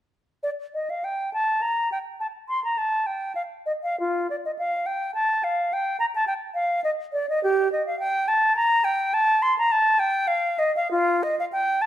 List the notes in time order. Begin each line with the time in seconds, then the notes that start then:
0.43 D5
0.74 D#5
0.90 F5
1.04 G5
1.34 A5
1.62 A#5
1.92 G5
2.20 A5
2.49 C6
2.64 A#5
2.78 A5
3.06 G5
3.35 F5
3.66 D#5
3.83 F5
4.00 F4
4.30 D5
4.45 D#5
4.59 F5
4.86 G5
5.15 A5
5.44 F5
5.73 G5
6.00 A#5
6.15 A5
6.27 G5
6.54 F5
6.84 D#5
7.13 D5
7.29 D#5
7.44 G4
7.72 D#5
7.87 F5
7.99 G5
8.28 A5
8.56 A#5
8.84 G5
9.14 A5
9.42 C6
9.58 A#5
9.72 A5
9.99 G5
10.28 F5
10.59 D#5
10.76 F5
10.91 F4
11.23 D#5
11.40 F5
11.52 G5
11.82 A5